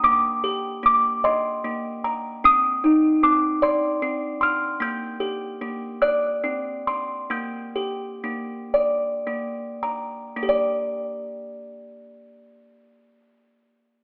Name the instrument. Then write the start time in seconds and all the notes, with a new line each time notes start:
music box
0.04 A#3 D6
0.44 G4
0.83 A#3 D6
1.24 D#5 C6
1.64 A#3
2.04 A#5
2.44 C4 D#6
2.84 D#4
3.23 C4 D6
3.62 D5 C6
4.02 C4
4.41 C6 F6
4.80 A#3 G6
5.20 G4
5.61 A#3
6.02 D5 F#6
6.44 C4
6.87 C6
7.30 A#3 G6
7.76 G4
8.24 A#3
8.74 D5
9.27 A#3
9.83 A#5
10.37 A#3
10.43 G4
10.49 D5